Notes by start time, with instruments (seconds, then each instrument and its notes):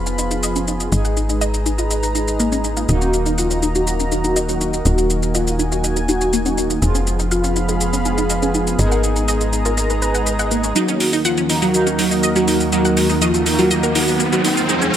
Already playing: analog synth bass F1, analog polysynth F3 B3 F4, analog synth pad G#4 B4 F5 B5
0.06 synth arpeggio sound C#4, shaker
0.18 synth arpeggio sound D#4, shaker
0.31 synth arpeggio sound D#4, shaker
0.43 synth arpeggio sound D#5, shaker
0.56 synth arpeggio sound C#4, shaker
0.68 synth arpeggio sound D#4, shaker
0.80 shaker
0.92 analog synth bass G#1, analog polysynth G#3 D#4 G#4, analog synth pad B4 D#5 A#5, synth arpeggio sound D#5, shaker
1.05 synth arpeggio sound F#5, shaker
1.17 synth arpeggio sound D#4, shaker
1.29 synth arpeggio sound D#4, shaker
1.41 synth arpeggio sound D#5, shaker
1.54 shaker
1.66 synth arpeggio sound D#4, shaker
1.79 synth arpeggio sound F4, shaker
1.91 synth arpeggio sound D#5, shaker
2.03 synth arpeggio sound B4, shaker
2.15 synth arpeggio sound D#4, shaker
2.28 shaker
2.40 synth arpeggio sound A#3, shaker
2.52 synth arpeggio sound C#4, shaker
2.64 synth arpeggio sound D#4, shaker
2.77 synth arpeggio sound F4, shaker
2.89 analog synth bass D#1, analog polysynth D#3 A#3 D#4, synth arpeggio sound D#4, analog synth lead F#4, analog synth pad F#4 A#4 A#5, shaker
3.01 synth arpeggio sound C#4, shaker
3.13 shaker
3.26 synth arpeggio sound D#4, shaker
3.38 analog synth lead F4, synth arpeggio sound F#5, shaker
3.50 synth arpeggio sound C#4, shaker
3.63 synth arpeggio sound D#4, shaker
3.75 synth arpeggio sound D#4, analog synth lead F#4, shaker
3.87 shaker
4.00 synth arpeggio sound C#4, shaker
4.12 synth arpeggio sound D#4, analog synth lead F#4, shaker
4.24 synth arpeggio sound D#4, shaker
4.36 synth arpeggio sound D#5, shaker
4.49 synth arpeggio sound C#4, analog synth lead F#4, shaker
4.61 synth arpeggio sound D#4, shaker
4.73 shaker
4.85 analog synth bass D#1, analog synth lead F#4, synth arpeggio sound D#5, analog synth pad G#5, shaker
4.98 synth arpeggio sound F#5, shaker
5.10 synth arpeggio sound D#4, shaker
5.23 synth arpeggio sound D#4, shaker
5.35 analog synth lead F4, synth arpeggio sound D#5, shaker
5.47 shaker
5.59 synth arpeggio sound D#4, shaker
5.72 synth arpeggio sound F4, analog synth lead F#4, shaker
5.84 synth arpeggio sound D#5, shaker
5.96 synth arpeggio sound A#4, shaker
6.08 synth arpeggio sound D#4, analog synth lead F#4, shaker
6.21 shaker
6.33 synth arpeggio sound A#3, shaker
6.46 synth arpeggio sound C#4, analog synth lead F#4, shaker
6.58 synth arpeggio sound D#4, shaker
6.70 synth arpeggio sound F4, shaker
6.82 analog synth bass F1, analog polysynth F3 B3 F4, analog synth pad B3 G#4 F5 B5, synth arpeggio sound D#4, analog synth lead G#4, shaker
6.95 synth arpeggio sound C#4, shaker
7.07 shaker
7.19 synth arpeggio sound D#4, shaker
7.31 analog synth lead F4, synth arpeggio sound F5, shaker
7.44 synth arpeggio sound C#4, shaker
7.56 synth arpeggio sound D#4, shaker
7.69 synth arpeggio sound D#4, analog synth lead G#4, shaker
7.81 shaker
7.93 synth arpeggio sound C#4, shaker
8.05 synth arpeggio sound D#4, analog synth lead G#4, shaker
8.18 synth arpeggio sound D#4, shaker
8.30 synth arpeggio sound D#5, shaker
8.42 synth arpeggio sound C#4, analog synth lead G#4, shaker
8.54 synth arpeggio sound D#4, shaker
8.67 shaker
8.79 analog synth bass G#1, analog polysynth G#3 D#4 G#4, analog synth lead A#4, analog synth pad D#5 A#5, synth arpeggio sound D#5, shaker
8.92 synth arpeggio sound F#5, shaker
9.04 synth arpeggio sound D#4, shaker
9.16 synth arpeggio sound D#4, shaker
9.28 analog synth lead G#4, synth arpeggio sound D#5, shaker
9.41 shaker
9.53 synth arpeggio sound D#4, shaker
9.65 synth arpeggio sound F4, analog synth lead A#4, shaker
9.77 synth arpeggio sound D#5, shaker
9.90 synth arpeggio sound B4, shaker
10.02 analog synth lead B4, synth arpeggio sound B4, shaker
10.15 synth arpeggio sound F#5, shaker
10.27 synth arpeggio sound B4, shaker
10.39 analog synth lead D#5, synth arpeggio sound F#5, shaker
10.51 synth arpeggio sound A#3, shaker
10.64 synth arpeggio sound C#4, shaker
10.76 analog synth pad D#2 D#3 F#4 A#4, analog polysynth D#3 A#3 D#4, synth pluck F#3, synth arpeggio sound D#4, analog synth lead F#4, riser, shaker
10.88 synth arpeggio sound C#4, shaker
11.00 open hi-hat, shaker
11.13 synth arpeggio sound D#4, shaker
11.25 synth pluck F3, analog synth lead F4, synth arpeggio sound F#5, shaker
11.37 synth arpeggio sound C#4, shaker
11.49 analog polysynth D#3 A#3 D#4, synth arpeggio sound D#4, open hi-hat, shaker
11.62 synth pluck F#3, synth arpeggio sound D#4, analog synth lead F#4, shaker
11.74 analog polysynth D#3 A#3 D#4, shaker
11.87 synth arpeggio sound C#4, shaker
11.99 synth pluck F#3, synth arpeggio sound D#4, analog synth lead F#4, open hi-hat, shaker
12.11 synth arpeggio sound D#4, shaker
12.23 synth arpeggio sound D#5, shaker
12.36 synth pluck F#3, synth arpeggio sound C#4, analog synth lead F#4, shaker
12.48 synth arpeggio sound D#4, open hi-hat, shaker
12.60 shaker
12.72 analog polysynth D#3 A#3 D#4, synth pluck F#3, analog synth lead F#4, synth arpeggio sound D#5, shaker
12.85 synth arpeggio sound F#5, shaker
12.97 synth arpeggio sound D#4, open hi-hat, shaker
13.10 synth arpeggio sound D#4, shaker
13.22 synth pluck F3, analog synth lead F4, synth arpeggio sound D#5, shaker
13.34 shaker
13.46 analog polysynth D#3 A#3 D#4, synth arpeggio sound D#4, open hi-hat, shaker
13.59 synth pluck F#3, synth arpeggio sound F4, analog synth lead F#4, shaker
13.71 analog polysynth D#3 A#3 D#4, synth arpeggio sound D#5, shaker
13.83 synth arpeggio sound A#4, shaker
13.95 synth pluck F#3, synth arpeggio sound D#4, analog synth lead F#4, open hi-hat, shaker
14.08 shaker
14.20 synth arpeggio sound A#3, shaker
14.32 synth pluck F#3, synth arpeggio sound C#4, analog synth lead F#4, shaker
14.45 synth arpeggio sound D#4, open hi-hat, shaker
14.57 synth arpeggio sound F4, shaker
14.69 analog synth pad F2 B2 F3 G#4, analog polysynth F3 B3 F4, synth pluck G#3, synth arpeggio sound D#4, analog synth lead G#4, shaker
14.82 synth arpeggio sound C#4, shaker
14.94 open hi-hat, shaker